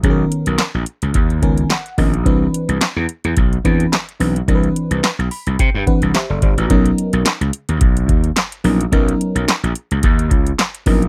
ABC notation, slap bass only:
X:1
M:4/4
L:1/16
Q:"Swing 16ths" 1/4=108
K:B
V:1 name="Slap bass" clef=bass
B,,,2 z B,,, z A,,, z C,, D,,2 C,,2 z2 A,,,2 | =C,,2 z C,, z E,, z E,, B,,,2 E,,2 z2 B,,,2 | =C,,2 z C,, z B,,, z C,, =C, =G,, z C,, z F,,, =G,,, =A,,, | B,,,2 z B,,, z C,, z D,, B,,,2 D,,2 z2 A,,,2 |
B,,,2 z B,,, z A,,, z C,, D,,2 C,,2 z2 A,,,2 |]